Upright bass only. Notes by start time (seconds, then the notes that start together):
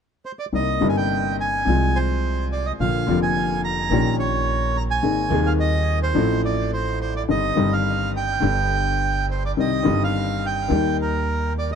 0.53 C2
0.81 G1
1.67 C2
2.80 A#1
3.08 F1
3.91 A#1
5.03 G#1
5.31 D#2
6.15 A1
7.29 G1
7.57 G1
8.43 G1
9.57 C2
9.87 G1
10.71 D#2